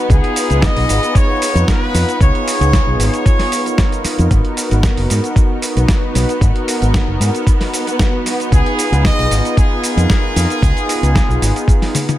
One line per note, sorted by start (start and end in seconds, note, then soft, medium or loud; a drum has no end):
0.00 4.30 B3 medium
0.09 0.18 C#2 loud
0.09 1.38 B3 medium
0.09 1.39 D#4 medium
0.09 1.39 F4 medium
0.09 0.59 G#4 loud
0.09 1.39 G#4 medium
0.09 kick loud
0.09 closed hi-hat medium
0.09 shaker soft
0.24 closed hi-hat soft
0.36 open hi-hat loud
0.36 shaker medium
0.50 0.66 C#2 medium
0.50 closed hi-hat soft
0.50 shaker soft
0.62 1.15 D#5 loud
0.62 kick loud
0.62 snare loud
0.62 closed hi-hat medium
0.62 shaker soft
0.76 0.84 B1 medium
0.76 open hi-hat medium
0.89 0.97 G#1 medium
0.89 open hi-hat loud
0.89 shaker medium
1.03 closed hi-hat medium
1.03 shaker soft
1.15 1.68 C#5 loud
1.15 kick loud
1.15 closed hi-hat medium
1.15 shaker soft
1.41 2.17 B3 medium
1.41 2.17 D#4 medium
1.41 2.18 F4 medium
1.41 2.18 B4 medium
1.41 open hi-hat loud
1.41 shaker medium
1.55 1.63 F2 medium
1.55 closed hi-hat medium
1.55 shaker soft
1.68 2.17 B4 loud
1.68 kick loud
1.68 snare loud
1.68 closed hi-hat medium
1.68 shaker soft
1.94 2.03 F2 medium
1.94 open hi-hat loud
1.94 shaker medium
2.09 closed hi-hat medium
2.09 shaker soft
2.19 2.29 C#2 loud
2.19 3.49 B3 medium
2.19 3.49 D#4 medium
2.19 3.50 F4 medium
2.19 3.50 G#4 loud
2.19 2.99 C#5 loud
2.19 kick loud
2.19 closed hi-hat medium
2.19 shaker soft
2.35 closed hi-hat soft
2.48 open hi-hat loud
2.48 shaker medium
2.60 2.76 C#2 medium
2.60 closed hi-hat medium
2.60 shaker soft
2.73 kick loud
2.73 snare loud
2.73 closed hi-hat medium
2.73 shaker soft
2.87 2.95 B1 medium
2.99 3.08 G#1 medium
2.99 4.01 C#5 loud
2.99 open hi-hat loud
2.99 shaker medium
3.14 closed hi-hat medium
3.14 shaker soft
3.26 kick loud
3.26 closed hi-hat medium
3.26 shaker soft
3.39 snare soft
3.39 open hi-hat medium
3.52 4.28 B3 medium
3.52 4.28 D#4 medium
3.52 4.28 F4 medium
3.52 4.29 A#4 medium
3.52 open hi-hat loud
3.52 shaker medium
3.66 closed hi-hat medium
3.66 shaker soft
3.78 kick loud
3.78 snare loud
3.78 closed hi-hat medium
3.78 shaker soft
3.92 closed hi-hat soft
3.92 shaker soft
4.04 muted fingered electric bass stroke soft
4.04 open hi-hat loud
4.04 shaker medium
4.19 4.26 F2 loud
4.19 closed hi-hat soft
4.19 shaker soft
4.30 4.40 G#1 loud
4.30 5.59 B3 medium
4.30 12.18 B3 medium
4.30 5.60 D#4 medium
4.30 5.60 F#4 medium
4.30 5.60 A#4 medium
4.30 kick loud
4.30 closed hi-hat medium
4.30 shaker soft
4.45 closed hi-hat soft
4.57 open hi-hat loud
4.57 shaker medium
4.71 4.87 G#1 medium
4.71 closed hi-hat medium
4.71 shaker soft
4.83 kick loud
4.83 snare loud
4.83 closed hi-hat medium
4.83 shaker soft
4.97 5.05 F#1 medium
4.97 open hi-hat medium
5.10 5.19 G#2 medium
5.10 open hi-hat loud
5.10 shaker medium
5.24 closed hi-hat soft
5.24 shaker soft
5.36 kick loud
5.36 closed hi-hat medium
5.36 shaker soft
5.61 6.38 B3 medium
5.61 6.38 D#4 medium
5.61 6.39 F#4 medium
5.61 6.39 B4 medium
5.61 open hi-hat loud
5.61 shaker medium
5.76 5.84 B1 medium
5.76 closed hi-hat medium
5.76 shaker soft
5.88 kick loud
5.88 snare loud
5.88 closed hi-hat medium
5.88 shaker soft
6.15 6.24 B1 loud
6.15 open hi-hat loud
6.15 shaker medium
6.29 closed hi-hat medium
6.29 shaker soft
6.41 6.50 G#1 loud
6.41 7.70 B3 medium
6.41 7.70 D#4 medium
6.41 7.71 F#4 medium
6.41 7.71 A#4 medium
6.41 kick loud
6.41 closed hi-hat medium
6.41 shaker soft
6.56 closed hi-hat soft
6.68 open hi-hat loud
6.68 shaker medium
6.82 6.98 G#1 medium
6.82 closed hi-hat medium
6.82 shaker soft
6.94 kick loud
6.94 snare loud
6.94 closed hi-hat medium
6.94 shaker soft
7.08 7.16 F#1 medium
7.20 7.29 G#2 medium
7.20 open hi-hat loud
7.20 shaker medium
7.35 closed hi-hat medium
7.35 shaker soft
7.47 kick loud
7.47 closed hi-hat medium
7.47 shaker medium
7.61 snare soft
7.61 open hi-hat medium
7.72 8.49 B3 medium
7.72 8.49 D#4 medium
7.72 8.49 F#4 medium
7.72 8.49 B4 medium
7.72 open hi-hat loud
7.72 shaker medium
7.87 closed hi-hat medium
7.87 shaker soft
7.99 kick loud
7.99 snare loud
7.99 closed hi-hat medium
7.99 shaker soft
8.26 open hi-hat loud
8.26 shaker medium
8.40 closed hi-hat medium
8.40 shaker soft
8.51 8.61 C#2 loud
8.51 9.81 B3 medium
8.51 9.81 D#4 medium
8.51 9.81 F4 medium
8.51 9.01 G#4 loud
8.51 9.82 G#4 medium
8.51 kick loud
8.51 closed hi-hat medium
8.51 shaker soft
8.66 closed hi-hat soft
8.79 open hi-hat loud
8.79 shaker medium
8.92 9.08 C#2 medium
8.92 closed hi-hat medium
8.92 shaker soft
9.04 9.54 D#5 loud
9.04 kick loud
9.04 snare loud
9.04 closed hi-hat medium
9.04 shaker soft
9.19 9.26 B1 medium
9.19 open hi-hat medium
9.31 9.39 G#1 medium
9.31 open hi-hat loud
9.31 shaker medium
9.45 closed hi-hat medium
9.45 shaker soft
9.57 12.18 G#4 loud
9.57 kick loud
9.57 closed hi-hat medium
9.57 shaker soft
9.82 10.59 B3 medium
9.82 10.59 D#4 medium
9.82 10.60 F4 medium
9.82 10.60 A#4 medium
9.82 open hi-hat loud
9.82 shaker medium
9.97 10.05 F2 medium
9.97 closed hi-hat medium
9.97 shaker soft
10.10 kick loud
10.10 snare loud
10.10 closed hi-hat medium
10.10 shaker soft
10.36 10.45 F2 loud
10.36 open hi-hat loud
10.36 shaker medium
10.50 closed hi-hat medium
10.50 shaker soft
10.61 10.71 C#2 loud
10.61 11.91 B3 medium
10.61 11.92 D#4 medium
10.61 11.92 F4 medium
10.61 11.92 G#4 medium
10.61 kick loud
10.61 closed hi-hat medium
10.61 shaker soft
10.77 closed hi-hat soft
10.77 shaker soft
10.89 open hi-hat loud
10.89 shaker medium
11.03 11.18 C#2 medium
11.03 closed hi-hat medium
11.03 shaker soft
11.15 kick loud
11.15 snare loud
11.15 closed hi-hat medium
11.15 shaker soft
11.29 11.37 B1 medium
11.29 shaker soft
11.42 11.50 G#1 medium
11.42 open hi-hat loud
11.42 shaker medium
11.56 closed hi-hat medium
11.56 shaker soft
11.68 kick loud
11.68 closed hi-hat medium
11.68 shaker soft
11.82 snare soft
11.82 open hi-hat medium
11.95 open hi-hat loud
11.95 high tom medium
11.95 shaker medium
12.09 closed hi-hat medium
12.09 high tom medium
12.09 shaker soft